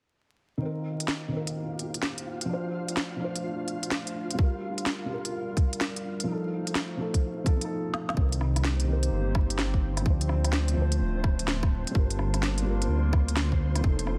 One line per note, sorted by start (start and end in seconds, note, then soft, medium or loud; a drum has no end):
0.58 1.27 D#3 medium
0.58 2.47 A#3 medium
0.58 1.30 C4 medium
0.58 2.48 D#4 medium
0.58 7.69 F4 medium
0.58 2.48 G4 medium
0.58 4.35 C5 medium
0.58 7.69 F5 medium
0.58 2.48 G5 medium
0.65 1.32 A#4 medium
1.00 closed hi-hat medium
1.08 snare medium
1.28 2.46 D#3 medium
1.28 2.48 C4 medium
1.36 2.50 A#4 medium
1.47 closed hi-hat medium
1.79 closed hi-hat soft
1.94 closed hi-hat medium
2.03 snare medium
2.18 closed hi-hat soft
2.41 closed hi-hat soft
2.45 3.15 F3 medium
2.45 4.36 A3 medium
2.45 6.23 D4 medium
2.45 3.18 D4 medium
2.45 7.65 F4 medium
2.45 7.65 F5 medium
2.53 3.20 C5 medium
2.88 closed hi-hat medium
2.97 snare loud
3.16 4.35 F3 medium
3.20 4.37 D4 medium
3.20 4.38 C5 medium
3.36 closed hi-hat medium
3.68 closed hi-hat soft
3.83 closed hi-hat medium
3.91 snare loud
4.07 closed hi-hat soft
4.31 5.04 G3 medium
4.31 closed hi-hat medium
4.38 6.26 G3 medium
4.38 5.07 F4 medium
4.38 6.25 A#4 medium
4.38 kick loud
4.42 5.09 A#4 medium
4.78 closed hi-hat medium
4.86 snare loud
5.06 6.24 G3 medium
5.06 6.26 F4 medium
5.14 6.28 A#4 medium
5.25 closed hi-hat medium
5.57 kick loud
5.57 closed hi-hat soft
5.73 closed hi-hat medium
5.81 snare loud
5.96 closed hi-hat soft
6.20 6.95 F3 medium
6.20 closed hi-hat medium
6.28 7.69 A3 medium
6.28 6.96 D#4 medium
6.28 7.68 D#4 medium
6.28 7.68 C5 medium
6.32 6.99 A4 medium
6.67 closed hi-hat medium
6.75 snare loud
6.97 7.42 F3 medium
6.97 7.44 D#4 medium
6.97 7.45 A4 medium
7.14 kick medium
7.14 closed hi-hat soft
7.44 7.55 F3 medium
7.44 7.58 D#4 medium
7.44 7.58 A4 medium
7.44 kick loud
7.44 closed hi-hat soft
7.57 7.67 F3 medium
7.61 7.69 D#4 medium
7.61 7.71 A4 medium
7.61 closed hi-hat medium
7.94 snare medium
8.09 snare medium
8.13 8.87 C2 medium
8.13 8.83 D#3 medium
8.13 10.04 A#3 medium
8.13 14.18 C4 medium
8.13 11.91 C4 medium
8.13 8.86 C4 medium
8.13 10.04 D#4 medium
8.13 10.04 G4 medium
8.13 14.18 C5 medium
8.13 10.03 C5 medium
8.13 kick loud
8.21 8.88 A#4 medium
8.32 closed hi-hat soft
8.41 cross-stick soft
8.56 cross-stick medium
8.56 closed hi-hat medium
8.64 snare loud
8.80 closed hi-hat soft
8.84 9.10 C2 medium
8.84 10.02 D#3 medium
8.84 10.04 C4 medium
8.92 10.06 A#4 medium
9.03 closed hi-hat medium
9.12 10.07 G1 medium
9.35 kick loud
9.35 cross-stick medium
9.50 closed hi-hat medium
9.59 snare loud
9.74 kick medium
9.97 cross-stick medium
9.97 closed hi-hat medium
10.02 10.75 D2 medium
10.02 10.72 F3 medium
10.02 11.92 A3 medium
10.02 13.79 D4 medium
10.02 11.92 F4 medium
10.02 11.92 C5 medium
10.02 kick loud
10.06 10.75 D4 medium
10.06 10.77 C5 medium
10.21 closed hi-hat soft
10.29 cross-stick soft
10.44 cross-stick soft
10.44 closed hi-hat medium
10.53 snare loud
10.68 closed hi-hat soft
10.73 11.02 D2 medium
10.73 11.91 F3 medium
10.73 11.93 D4 medium
10.81 11.95 C5 medium
10.92 closed hi-hat medium
11.01 11.84 D1 loud
11.24 kick loud
11.24 cross-stick medium
11.39 closed hi-hat medium
11.48 snare loud
11.63 kick loud
11.63 cross-stick medium
11.87 12.61 G3 medium
11.87 closed hi-hat medium
11.95 12.65 G1 loud
11.95 13.82 G3 medium
11.95 13.82 A#3 medium
11.95 14.18 F4 medium
11.95 12.64 F4 medium
11.95 13.82 A#4 medium
11.95 kick loud
11.99 12.66 A#4 medium
12.10 closed hi-hat soft
12.19 cross-stick soft
12.34 cross-stick soft
12.34 closed hi-hat medium
12.43 snare loud
12.58 closed hi-hat soft
12.62 12.88 G1 medium
12.62 13.80 G3 medium
12.62 13.82 F4 medium
12.70 13.84 A#4 medium
12.82 closed hi-hat medium
12.89 13.82 D2 medium
13.13 kick loud
13.13 cross-stick medium
13.28 closed hi-hat medium
13.36 snare loud
13.52 kick medium
13.75 cross-stick medium
13.75 closed hi-hat medium
13.81 14.18 F1 medium
13.81 14.18 F3 medium
13.81 14.18 A3 medium
13.81 14.18 C4 medium
13.81 14.18 D#4 medium
13.81 14.18 C5 medium
13.81 kick loud
13.88 14.18 A4 medium
13.99 closed hi-hat soft
14.07 cross-stick soft